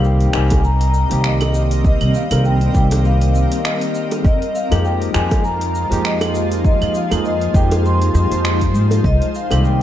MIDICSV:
0, 0, Header, 1, 6, 480
1, 0, Start_track
1, 0, Key_signature, -3, "minor"
1, 0, Tempo, 600000
1, 1477, Time_signature, 4, 2, 24, 8
1, 7861, End_track
2, 0, Start_track
2, 0, Title_t, "Vibraphone"
2, 0, Program_c, 0, 11
2, 41, Note_on_c, 0, 79, 85
2, 262, Note_off_c, 0, 79, 0
2, 283, Note_on_c, 0, 80, 86
2, 522, Note_on_c, 0, 82, 98
2, 527, Note_off_c, 0, 80, 0
2, 961, Note_on_c, 0, 77, 66
2, 963, Note_off_c, 0, 82, 0
2, 1004, Note_off_c, 0, 77, 0
2, 1012, Note_on_c, 0, 75, 79
2, 1353, Note_off_c, 0, 75, 0
2, 1488, Note_on_c, 0, 75, 98
2, 1726, Note_on_c, 0, 77, 86
2, 1729, Note_off_c, 0, 75, 0
2, 1945, Note_off_c, 0, 77, 0
2, 1965, Note_on_c, 0, 79, 93
2, 2185, Note_off_c, 0, 79, 0
2, 2204, Note_on_c, 0, 79, 87
2, 2310, Note_off_c, 0, 79, 0
2, 2448, Note_on_c, 0, 77, 95
2, 2870, Note_off_c, 0, 77, 0
2, 2879, Note_on_c, 0, 77, 69
2, 2919, Note_on_c, 0, 75, 87
2, 2923, Note_off_c, 0, 77, 0
2, 3266, Note_off_c, 0, 75, 0
2, 3406, Note_on_c, 0, 75, 93
2, 3643, Note_on_c, 0, 77, 92
2, 3648, Note_off_c, 0, 75, 0
2, 3884, Note_on_c, 0, 79, 95
2, 3887, Note_off_c, 0, 77, 0
2, 4123, Note_on_c, 0, 80, 99
2, 4128, Note_off_c, 0, 79, 0
2, 4355, Note_on_c, 0, 82, 105
2, 4367, Note_off_c, 0, 80, 0
2, 4838, Note_on_c, 0, 75, 93
2, 4850, Note_off_c, 0, 82, 0
2, 5186, Note_off_c, 0, 75, 0
2, 5327, Note_on_c, 0, 75, 108
2, 5546, Note_off_c, 0, 75, 0
2, 5568, Note_on_c, 0, 77, 101
2, 5673, Note_off_c, 0, 77, 0
2, 5807, Note_on_c, 0, 75, 86
2, 6046, Note_on_c, 0, 79, 96
2, 6049, Note_off_c, 0, 75, 0
2, 6152, Note_off_c, 0, 79, 0
2, 6289, Note_on_c, 0, 84, 95
2, 6971, Note_off_c, 0, 84, 0
2, 7246, Note_on_c, 0, 75, 102
2, 7465, Note_off_c, 0, 75, 0
2, 7487, Note_on_c, 0, 77, 104
2, 7729, Note_off_c, 0, 77, 0
2, 7731, Note_on_c, 0, 79, 99
2, 7861, Note_off_c, 0, 79, 0
2, 7861, End_track
3, 0, Start_track
3, 0, Title_t, "Ambient pad"
3, 0, Program_c, 1, 92
3, 0, Note_on_c, 1, 55, 76
3, 0, Note_on_c, 1, 60, 87
3, 0, Note_on_c, 1, 70, 76
3, 0, Note_on_c, 1, 75, 90
3, 3366, Note_off_c, 1, 55, 0
3, 3366, Note_off_c, 1, 60, 0
3, 3366, Note_off_c, 1, 75, 0
3, 3397, Note_on_c, 1, 53, 87
3, 3400, Note_on_c, 1, 65, 77
3, 3401, Note_on_c, 1, 56, 78
3, 3402, Note_on_c, 1, 63, 73
3, 5288, Note_off_c, 1, 70, 0
3, 5313, Note_on_c, 1, 72, 76
3, 7205, Note_off_c, 1, 53, 0
3, 7206, Note_off_c, 1, 65, 0
3, 7207, Note_off_c, 1, 56, 0
3, 7216, Note_off_c, 1, 72, 0
3, 7238, Note_on_c, 1, 48, 88
3, 7238, Note_on_c, 1, 55, 81
3, 7238, Note_on_c, 1, 70, 95
3, 7861, Note_off_c, 1, 48, 0
3, 7861, Note_off_c, 1, 55, 0
3, 7861, Note_off_c, 1, 63, 0
3, 7861, Note_off_c, 1, 70, 0
3, 7861, End_track
4, 0, Start_track
4, 0, Title_t, "Tine electric piano"
4, 0, Program_c, 2, 4
4, 0, Note_on_c, 2, 51, 97
4, 0, Note_on_c, 2, 55, 97
4, 0, Note_on_c, 2, 58, 89
4, 0, Note_on_c, 2, 60, 88
4, 0, Note_on_c, 2, 67, 101
4, 248, Note_off_c, 2, 51, 0
4, 250, Note_off_c, 2, 55, 0
4, 251, Note_off_c, 2, 58, 0
4, 253, Note_off_c, 2, 60, 0
4, 254, Note_off_c, 2, 67, 0
4, 271, Note_on_c, 2, 51, 96
4, 272, Note_on_c, 2, 55, 86
4, 277, Note_on_c, 2, 58, 88
4, 281, Note_on_c, 2, 60, 89
4, 283, Note_on_c, 2, 67, 101
4, 494, Note_off_c, 2, 51, 0
4, 495, Note_off_c, 2, 55, 0
4, 497, Note_off_c, 2, 58, 0
4, 499, Note_off_c, 2, 60, 0
4, 500, Note_off_c, 2, 67, 0
4, 879, Note_on_c, 2, 51, 80
4, 885, Note_on_c, 2, 55, 80
4, 891, Note_on_c, 2, 58, 80
4, 896, Note_on_c, 2, 60, 78
4, 902, Note_on_c, 2, 67, 95
4, 1813, Note_off_c, 2, 51, 0
4, 1816, Note_off_c, 2, 55, 0
4, 1819, Note_off_c, 2, 58, 0
4, 1821, Note_off_c, 2, 60, 0
4, 1824, Note_off_c, 2, 67, 0
4, 1845, Note_on_c, 2, 51, 72
4, 1849, Note_on_c, 2, 55, 73
4, 1852, Note_on_c, 2, 58, 64
4, 1853, Note_on_c, 2, 60, 68
4, 1858, Note_on_c, 2, 70, 78
4, 2168, Note_off_c, 2, 51, 0
4, 2170, Note_off_c, 2, 55, 0
4, 2172, Note_off_c, 2, 58, 0
4, 2172, Note_off_c, 2, 60, 0
4, 2175, Note_off_c, 2, 70, 0
4, 2187, Note_on_c, 2, 51, 75
4, 2192, Note_on_c, 2, 55, 71
4, 2200, Note_on_c, 2, 58, 68
4, 2205, Note_on_c, 2, 60, 67
4, 2212, Note_on_c, 2, 67, 88
4, 3379, Note_off_c, 2, 51, 0
4, 3382, Note_off_c, 2, 55, 0
4, 3386, Note_off_c, 2, 58, 0
4, 3388, Note_off_c, 2, 60, 0
4, 3392, Note_off_c, 2, 67, 0
4, 3768, Note_on_c, 2, 53, 96
4, 3770, Note_on_c, 2, 56, 88
4, 3774, Note_on_c, 2, 58, 90
4, 3778, Note_on_c, 2, 63, 91
4, 3780, Note_on_c, 2, 67, 108
4, 4090, Note_off_c, 2, 53, 0
4, 4091, Note_off_c, 2, 56, 0
4, 4093, Note_off_c, 2, 58, 0
4, 4095, Note_off_c, 2, 63, 0
4, 4096, Note_off_c, 2, 67, 0
4, 4111, Note_on_c, 2, 53, 97
4, 4113, Note_on_c, 2, 56, 92
4, 4118, Note_on_c, 2, 58, 88
4, 4119, Note_on_c, 2, 63, 86
4, 4122, Note_on_c, 2, 67, 105
4, 4334, Note_off_c, 2, 53, 0
4, 4335, Note_off_c, 2, 56, 0
4, 4338, Note_off_c, 2, 58, 0
4, 4339, Note_off_c, 2, 63, 0
4, 4340, Note_off_c, 2, 67, 0
4, 4718, Note_on_c, 2, 53, 88
4, 4725, Note_on_c, 2, 56, 84
4, 4732, Note_on_c, 2, 58, 77
4, 4737, Note_on_c, 2, 63, 85
4, 4741, Note_on_c, 2, 67, 100
4, 5652, Note_off_c, 2, 53, 0
4, 5656, Note_off_c, 2, 56, 0
4, 5660, Note_off_c, 2, 58, 0
4, 5662, Note_off_c, 2, 63, 0
4, 5664, Note_off_c, 2, 67, 0
4, 5681, Note_on_c, 2, 53, 78
4, 5686, Note_on_c, 2, 56, 69
4, 5688, Note_on_c, 2, 58, 69
4, 5692, Note_on_c, 2, 63, 67
4, 5695, Note_on_c, 2, 68, 82
4, 6006, Note_off_c, 2, 53, 0
4, 6009, Note_off_c, 2, 56, 0
4, 6010, Note_off_c, 2, 58, 0
4, 6012, Note_off_c, 2, 63, 0
4, 6014, Note_off_c, 2, 68, 0
4, 6026, Note_on_c, 2, 53, 72
4, 6030, Note_on_c, 2, 56, 70
4, 6037, Note_on_c, 2, 58, 68
4, 6045, Note_on_c, 2, 63, 71
4, 6049, Note_on_c, 2, 67, 85
4, 7219, Note_off_c, 2, 53, 0
4, 7221, Note_off_c, 2, 56, 0
4, 7224, Note_off_c, 2, 58, 0
4, 7228, Note_off_c, 2, 63, 0
4, 7230, Note_off_c, 2, 67, 0
4, 7603, Note_on_c, 2, 51, 96
4, 7606, Note_on_c, 2, 55, 86
4, 7609, Note_on_c, 2, 58, 85
4, 7612, Note_on_c, 2, 60, 90
4, 7616, Note_on_c, 2, 67, 106
4, 7861, Note_off_c, 2, 51, 0
4, 7861, Note_off_c, 2, 55, 0
4, 7861, Note_off_c, 2, 58, 0
4, 7861, Note_off_c, 2, 60, 0
4, 7861, Note_off_c, 2, 67, 0
4, 7861, End_track
5, 0, Start_track
5, 0, Title_t, "Upright bass"
5, 0, Program_c, 3, 32
5, 0, Note_on_c, 3, 36, 85
5, 230, Note_off_c, 3, 36, 0
5, 277, Note_on_c, 3, 36, 84
5, 831, Note_off_c, 3, 36, 0
5, 890, Note_on_c, 3, 36, 79
5, 1550, Note_off_c, 3, 36, 0
5, 1609, Note_on_c, 3, 36, 85
5, 1686, Note_off_c, 3, 36, 0
5, 1848, Note_on_c, 3, 36, 85
5, 2147, Note_off_c, 3, 36, 0
5, 2197, Note_on_c, 3, 36, 95
5, 2750, Note_off_c, 3, 36, 0
5, 3395, Note_on_c, 3, 41, 104
5, 3493, Note_off_c, 3, 41, 0
5, 3774, Note_on_c, 3, 41, 88
5, 4070, Note_off_c, 3, 41, 0
5, 4119, Note_on_c, 3, 41, 85
5, 4672, Note_off_c, 3, 41, 0
5, 4729, Note_on_c, 3, 41, 83
5, 5389, Note_off_c, 3, 41, 0
5, 5451, Note_on_c, 3, 41, 83
5, 5527, Note_off_c, 3, 41, 0
5, 5693, Note_on_c, 3, 41, 82
5, 5990, Note_off_c, 3, 41, 0
5, 6034, Note_on_c, 3, 41, 87
5, 6512, Note_off_c, 3, 41, 0
5, 6517, Note_on_c, 3, 41, 100
5, 6613, Note_off_c, 3, 41, 0
5, 6648, Note_on_c, 3, 41, 90
5, 6995, Note_off_c, 3, 41, 0
5, 6995, Note_on_c, 3, 44, 96
5, 7176, Note_off_c, 3, 44, 0
5, 7232, Note_on_c, 3, 36, 98
5, 7331, Note_off_c, 3, 36, 0
5, 7609, Note_on_c, 3, 36, 81
5, 7861, Note_off_c, 3, 36, 0
5, 7861, End_track
6, 0, Start_track
6, 0, Title_t, "Drums"
6, 33, Note_on_c, 9, 82, 32
6, 113, Note_off_c, 9, 82, 0
6, 164, Note_on_c, 9, 46, 31
6, 244, Note_off_c, 9, 46, 0
6, 267, Note_on_c, 9, 26, 75
6, 269, Note_on_c, 9, 82, 71
6, 347, Note_off_c, 9, 26, 0
6, 349, Note_off_c, 9, 82, 0
6, 403, Note_on_c, 9, 46, 61
6, 405, Note_on_c, 9, 82, 45
6, 411, Note_on_c, 9, 36, 111
6, 413, Note_on_c, 9, 60, 83
6, 483, Note_off_c, 9, 46, 0
6, 485, Note_off_c, 9, 82, 0
6, 491, Note_off_c, 9, 36, 0
6, 493, Note_off_c, 9, 60, 0
6, 513, Note_on_c, 9, 82, 35
6, 593, Note_off_c, 9, 82, 0
6, 646, Note_on_c, 9, 46, 49
6, 726, Note_off_c, 9, 46, 0
6, 751, Note_on_c, 9, 82, 86
6, 831, Note_off_c, 9, 82, 0
6, 887, Note_on_c, 9, 46, 59
6, 888, Note_on_c, 9, 82, 44
6, 967, Note_off_c, 9, 46, 0
6, 968, Note_off_c, 9, 82, 0
6, 992, Note_on_c, 9, 26, 85
6, 994, Note_on_c, 9, 82, 33
6, 1072, Note_off_c, 9, 26, 0
6, 1074, Note_off_c, 9, 82, 0
6, 1125, Note_on_c, 9, 46, 42
6, 1125, Note_on_c, 9, 75, 58
6, 1134, Note_on_c, 9, 60, 97
6, 1205, Note_off_c, 9, 46, 0
6, 1205, Note_off_c, 9, 75, 0
6, 1214, Note_off_c, 9, 60, 0
6, 1234, Note_on_c, 9, 82, 79
6, 1314, Note_off_c, 9, 82, 0
6, 1369, Note_on_c, 9, 46, 57
6, 1370, Note_on_c, 9, 82, 46
6, 1449, Note_off_c, 9, 46, 0
6, 1450, Note_off_c, 9, 82, 0
6, 1475, Note_on_c, 9, 82, 34
6, 1476, Note_on_c, 9, 36, 116
6, 1555, Note_off_c, 9, 82, 0
6, 1556, Note_off_c, 9, 36, 0
6, 1607, Note_on_c, 9, 46, 32
6, 1607, Note_on_c, 9, 75, 60
6, 1687, Note_off_c, 9, 46, 0
6, 1687, Note_off_c, 9, 75, 0
6, 1715, Note_on_c, 9, 82, 79
6, 1795, Note_off_c, 9, 82, 0
6, 1848, Note_on_c, 9, 46, 59
6, 1848, Note_on_c, 9, 75, 75
6, 1849, Note_on_c, 9, 82, 44
6, 1858, Note_on_c, 9, 60, 65
6, 1928, Note_off_c, 9, 46, 0
6, 1928, Note_off_c, 9, 75, 0
6, 1929, Note_off_c, 9, 82, 0
6, 1938, Note_off_c, 9, 60, 0
6, 1957, Note_on_c, 9, 82, 34
6, 2037, Note_off_c, 9, 82, 0
6, 2089, Note_on_c, 9, 46, 31
6, 2169, Note_off_c, 9, 46, 0
6, 2195, Note_on_c, 9, 82, 77
6, 2197, Note_on_c, 9, 36, 114
6, 2275, Note_off_c, 9, 82, 0
6, 2277, Note_off_c, 9, 36, 0
6, 2330, Note_on_c, 9, 46, 62
6, 2331, Note_on_c, 9, 82, 48
6, 2336, Note_on_c, 9, 60, 102
6, 2410, Note_off_c, 9, 46, 0
6, 2411, Note_off_c, 9, 82, 0
6, 2416, Note_off_c, 9, 60, 0
6, 2438, Note_on_c, 9, 82, 36
6, 2518, Note_off_c, 9, 82, 0
6, 2571, Note_on_c, 9, 46, 47
6, 2651, Note_off_c, 9, 46, 0
6, 2680, Note_on_c, 9, 82, 82
6, 2760, Note_off_c, 9, 82, 0
6, 2813, Note_on_c, 9, 46, 57
6, 2814, Note_on_c, 9, 82, 49
6, 2893, Note_off_c, 9, 46, 0
6, 2894, Note_off_c, 9, 82, 0
6, 2919, Note_on_c, 9, 26, 85
6, 2921, Note_on_c, 9, 82, 38
6, 2999, Note_off_c, 9, 26, 0
6, 3001, Note_off_c, 9, 82, 0
6, 3051, Note_on_c, 9, 46, 45
6, 3131, Note_off_c, 9, 46, 0
6, 3157, Note_on_c, 9, 82, 86
6, 3237, Note_off_c, 9, 82, 0
6, 3291, Note_on_c, 9, 46, 56
6, 3293, Note_on_c, 9, 82, 46
6, 3295, Note_on_c, 9, 60, 86
6, 3371, Note_off_c, 9, 46, 0
6, 3373, Note_off_c, 9, 82, 0
6, 3375, Note_off_c, 9, 60, 0
6, 3396, Note_on_c, 9, 36, 122
6, 3402, Note_on_c, 9, 82, 34
6, 3476, Note_off_c, 9, 36, 0
6, 3482, Note_off_c, 9, 82, 0
6, 3536, Note_on_c, 9, 46, 29
6, 3616, Note_off_c, 9, 46, 0
6, 3642, Note_on_c, 9, 82, 84
6, 3722, Note_off_c, 9, 82, 0
6, 3774, Note_on_c, 9, 46, 54
6, 3774, Note_on_c, 9, 60, 74
6, 3774, Note_on_c, 9, 75, 70
6, 3775, Note_on_c, 9, 82, 48
6, 3854, Note_off_c, 9, 46, 0
6, 3854, Note_off_c, 9, 60, 0
6, 3854, Note_off_c, 9, 75, 0
6, 3855, Note_off_c, 9, 82, 0
6, 3878, Note_on_c, 9, 82, 36
6, 3958, Note_off_c, 9, 82, 0
6, 4013, Note_on_c, 9, 46, 30
6, 4093, Note_off_c, 9, 46, 0
6, 4115, Note_on_c, 9, 26, 75
6, 4117, Note_on_c, 9, 82, 78
6, 4195, Note_off_c, 9, 26, 0
6, 4197, Note_off_c, 9, 82, 0
6, 4250, Note_on_c, 9, 60, 86
6, 4251, Note_on_c, 9, 36, 108
6, 4251, Note_on_c, 9, 46, 53
6, 4252, Note_on_c, 9, 82, 45
6, 4330, Note_off_c, 9, 60, 0
6, 4331, Note_off_c, 9, 36, 0
6, 4331, Note_off_c, 9, 46, 0
6, 4332, Note_off_c, 9, 82, 0
6, 4357, Note_on_c, 9, 82, 38
6, 4437, Note_off_c, 9, 82, 0
6, 4490, Note_on_c, 9, 46, 45
6, 4570, Note_off_c, 9, 46, 0
6, 4599, Note_on_c, 9, 82, 89
6, 4679, Note_off_c, 9, 82, 0
6, 4734, Note_on_c, 9, 46, 53
6, 4735, Note_on_c, 9, 82, 48
6, 4814, Note_off_c, 9, 46, 0
6, 4815, Note_off_c, 9, 82, 0
6, 4839, Note_on_c, 9, 26, 85
6, 4841, Note_on_c, 9, 82, 38
6, 4919, Note_off_c, 9, 26, 0
6, 4921, Note_off_c, 9, 82, 0
6, 4968, Note_on_c, 9, 60, 103
6, 4971, Note_on_c, 9, 46, 41
6, 4971, Note_on_c, 9, 75, 58
6, 5048, Note_off_c, 9, 60, 0
6, 5051, Note_off_c, 9, 46, 0
6, 5051, Note_off_c, 9, 75, 0
6, 5079, Note_on_c, 9, 82, 85
6, 5159, Note_off_c, 9, 82, 0
6, 5212, Note_on_c, 9, 46, 52
6, 5214, Note_on_c, 9, 82, 45
6, 5292, Note_off_c, 9, 46, 0
6, 5294, Note_off_c, 9, 82, 0
6, 5316, Note_on_c, 9, 36, 122
6, 5319, Note_on_c, 9, 82, 38
6, 5396, Note_off_c, 9, 36, 0
6, 5399, Note_off_c, 9, 82, 0
6, 5453, Note_on_c, 9, 46, 29
6, 5453, Note_on_c, 9, 75, 54
6, 5533, Note_off_c, 9, 46, 0
6, 5533, Note_off_c, 9, 75, 0
6, 5556, Note_on_c, 9, 82, 86
6, 5636, Note_off_c, 9, 82, 0
6, 5690, Note_on_c, 9, 60, 71
6, 5693, Note_on_c, 9, 46, 54
6, 5693, Note_on_c, 9, 75, 76
6, 5694, Note_on_c, 9, 82, 46
6, 5770, Note_off_c, 9, 60, 0
6, 5773, Note_off_c, 9, 46, 0
6, 5773, Note_off_c, 9, 75, 0
6, 5774, Note_off_c, 9, 82, 0
6, 5799, Note_on_c, 9, 82, 37
6, 5879, Note_off_c, 9, 82, 0
6, 5931, Note_on_c, 9, 46, 30
6, 6011, Note_off_c, 9, 46, 0
6, 6035, Note_on_c, 9, 36, 111
6, 6037, Note_on_c, 9, 82, 73
6, 6115, Note_off_c, 9, 36, 0
6, 6117, Note_off_c, 9, 82, 0
6, 6172, Note_on_c, 9, 46, 55
6, 6173, Note_on_c, 9, 82, 48
6, 6176, Note_on_c, 9, 60, 85
6, 6252, Note_off_c, 9, 46, 0
6, 6253, Note_off_c, 9, 82, 0
6, 6256, Note_off_c, 9, 60, 0
6, 6281, Note_on_c, 9, 82, 37
6, 6361, Note_off_c, 9, 82, 0
6, 6412, Note_on_c, 9, 46, 44
6, 6492, Note_off_c, 9, 46, 0
6, 6519, Note_on_c, 9, 82, 88
6, 6599, Note_off_c, 9, 82, 0
6, 6653, Note_on_c, 9, 46, 53
6, 6654, Note_on_c, 9, 82, 50
6, 6733, Note_off_c, 9, 46, 0
6, 6734, Note_off_c, 9, 82, 0
6, 6758, Note_on_c, 9, 26, 85
6, 6760, Note_on_c, 9, 82, 37
6, 6838, Note_off_c, 9, 26, 0
6, 6840, Note_off_c, 9, 82, 0
6, 6889, Note_on_c, 9, 36, 64
6, 6891, Note_on_c, 9, 46, 39
6, 6969, Note_off_c, 9, 36, 0
6, 6971, Note_off_c, 9, 46, 0
6, 6998, Note_on_c, 9, 82, 81
6, 7078, Note_off_c, 9, 82, 0
6, 7127, Note_on_c, 9, 60, 82
6, 7133, Note_on_c, 9, 46, 51
6, 7134, Note_on_c, 9, 82, 45
6, 7207, Note_off_c, 9, 60, 0
6, 7213, Note_off_c, 9, 46, 0
6, 7214, Note_off_c, 9, 82, 0
6, 7234, Note_on_c, 9, 36, 113
6, 7239, Note_on_c, 9, 82, 35
6, 7314, Note_off_c, 9, 36, 0
6, 7319, Note_off_c, 9, 82, 0
6, 7374, Note_on_c, 9, 46, 29
6, 7454, Note_off_c, 9, 46, 0
6, 7478, Note_on_c, 9, 82, 83
6, 7558, Note_off_c, 9, 82, 0
6, 7605, Note_on_c, 9, 60, 70
6, 7611, Note_on_c, 9, 46, 55
6, 7611, Note_on_c, 9, 75, 77
6, 7613, Note_on_c, 9, 82, 42
6, 7685, Note_off_c, 9, 60, 0
6, 7691, Note_off_c, 9, 46, 0
6, 7691, Note_off_c, 9, 75, 0
6, 7693, Note_off_c, 9, 82, 0
6, 7717, Note_on_c, 9, 82, 35
6, 7797, Note_off_c, 9, 82, 0
6, 7861, End_track
0, 0, End_of_file